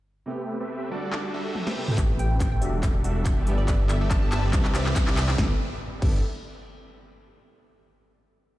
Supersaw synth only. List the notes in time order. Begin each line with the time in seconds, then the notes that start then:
0.28 A3 C4 G4 B4 E5
0.60 A3 C4 G4 B4 E5
0.91 G3 D4 F#4 A4 D5
1.34 G3 D4 F#4 A4 E5
1.67 A3 C4 G4 B4 E5
1.98 A3 E5
2.30 A3 C4 G4 B4 E5
2.62 G3 D4 F#4 A4 D5
3.04 G3 D4 F#4 A4 E5
3.37 B3 G4 A4 D5 E5
3.68 B3 G4 A4 D5 E5
4.01 B3 G4 A4 D5 E5
4.32 C4 G4 B4 D5 E5
4.74 C4 G4 B4 D5 E5
5.07 C4 G4 B4 D5 E5
5.38 G4 A4 D5
6.02 B3 G4 A4 D5 E5